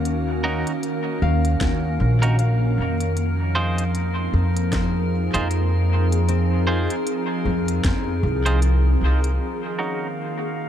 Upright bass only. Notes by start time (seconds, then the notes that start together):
Already playing: D#2
1.22 D#2
1.61 D#2
2.00 A#1
2.78 F2
4.34 F2
5.34 F2
7.45 F2
7.84 F2
8.23 C2
9.01 C2